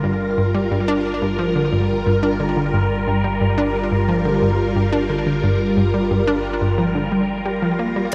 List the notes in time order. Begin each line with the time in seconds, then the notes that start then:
Already playing: G1 G3 F4 A#4
0.04 G2
0.38 G2
0.54 G3
0.71 G2
0.88 D4
1.22 G2
1.39 F3
1.55 D3
1.72 G2
2.06 G2
2.23 D4
2.40 D3
2.57 D3
2.73 G2
3.07 G2
3.24 G3
3.41 G2
3.58 D4
3.92 G2
4.08 F3
4.25 D3
4.42 G2
4.76 G2
4.93 D4
5.09 D3
5.26 D3
5.43 G2
5.77 G2
5.94 G3
6.11 G2
6.27 D4
6.61 G2
6.78 F3
6.95 D3
7.12 G3
7.46 G3
7.62 F3
7.79 A#3
7.96 G3